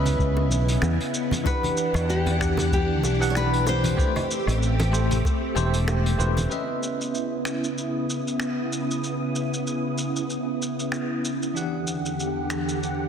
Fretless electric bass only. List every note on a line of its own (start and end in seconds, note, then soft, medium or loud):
0.00 0.15 C#2 loud
0.19 0.50 C#2 medium
0.50 0.77 B1 medium
0.82 0.97 E2 medium
1.94 3.03 E2 loud
3.03 3.94 B1 loud
4.47 5.20 A1 loud
5.56 6.15 E1 medium
6.19 6.46 E1 medium